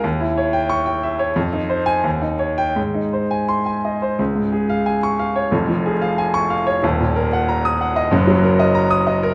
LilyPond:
\new Staff \with { instrumentName = "Grand piano" } { \time 2/4 \key aes \major \tempo 4 = 91 << { r4 des'''8 r8 | r8. aes''16 r8. g''16 | r4 c'''8 r8 | \key des \major r4 r16 des'''8 r16 |
r4 r16 des'''8 r16 | r4 r16 ees'''8 r16 | r4 r16 ees'''8 r16 | } \\ { ees,16 fes'16 des''16 g''8 g''16 fes''16 des''16 | f,16 ees'16 c''8 ees,16 ees'16 des''8 | aes,16 ees'16 c''16 aes''8 aes''16 ees''16 c''16 | des,16 aes,16 aes'16 f''16 aes''8 f''16 des''16 |
<f,, f,>16 f16 aes'16 f''16 aes''8 f''16 des''16 | <ees,, ees,>16 bes,16 bes'16 ges''16 bes''8 ges''16 ees''16 | <ges,, ges,>16 ges16 bes'16 ees''16 bes''8 ees''16 bes'16 | } >> }